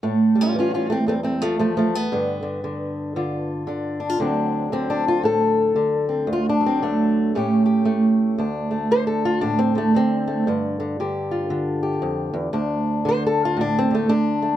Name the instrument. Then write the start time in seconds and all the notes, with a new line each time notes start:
steel-string acoustic guitar
0.03 A2 A3
0.35 G3
0.41 C#4 F4
0.55 E3 C#4
0.60 F4
0.74 C#4 F4
0.90 A3 C4
1.07 E2 A3 C4
1.23 A3 C4
1.41 F3 A3
1.59 F3 A3
1.77 F3 A3
1.95 B3
2.12 G2 D3
2.43 D3
2.64 D3
3.16 D3 F4
3.67 D3 D4
4.00 D4
4.09 F4
4.20 D2 D3 F#3 C4 D4
4.72 D3 C4
4.90 D4
5.08 F4
5.23 A2 A4
5.76 D3
6.09 C4
6.27 D2
6.33 F4
6.49 D4
6.61 F#3
6.66 C4
6.82 D3 A3
7.35 A2 A3 C#4 G4
7.66 G4
7.85 A3
8.38 D2 D4
8.71 A3
8.91 D3 C5
9.07 A4
9.25 F4
9.41 A2 D4
9.59 C4
9.75 D3 A3
9.95 D3 C4
10.28 A3
10.47 G2 D3
10.80 D3
11.00 D3 G4
11.31 F4
11.50 D3
11.83 G4
12.02 F2
12.34 E2
12.53 D2 D4
13.05 D3 C5
13.26 A4
13.45 F4
13.57 A2
13.61 D4
13.79 C4
13.91 D3 A3
14.09 D3 D4
14.42 A3